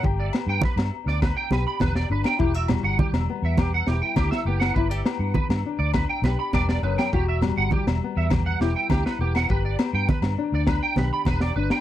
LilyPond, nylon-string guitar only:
\new Staff \with { instrumentName = "Nylon-string guitar" } { \time 4/4 \key g \major \tempo 4 = 102 << { <g g'>8 b4~ b16 d'8. g'4 d'8 | e'16 fis'16 g4 b4 e'4 b8 | e'16 g'16 b4 d'4 g'4. | fis'8 g4 b4 e'4 b8 |
g'8 b4 d'4 g'4 d'8 | } \\ { g,4 r4 g,4 d4 | e,4 e4 b,4 e4 | g,4 d4 g,4 g,8 fis,8 | e,4 e4 b,4 e4 |
g,4 d4 g,4 d4 | } >> }